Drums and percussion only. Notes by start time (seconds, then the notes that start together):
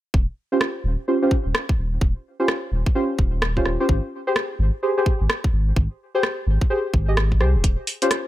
0.14 kick
0.61 cross-stick
1.31 kick
1.55 cross-stick
1.69 kick
2.01 kick
2.48 cross-stick
2.86 kick
3.19 kick
3.42 cross-stick
3.57 kick
3.65 cross-stick
3.89 kick
4.36 cross-stick
5.06 kick
5.30 cross-stick
5.44 kick
5.76 kick
6.23 cross-stick
6.61 kick
6.94 kick
7.17 cross-stick
7.32 kick
7.41 cross-stick
7.64 kick, closed hi-hat
7.87 open hi-hat
8.02 closed hi-hat
8.11 cross-stick, closed hi-hat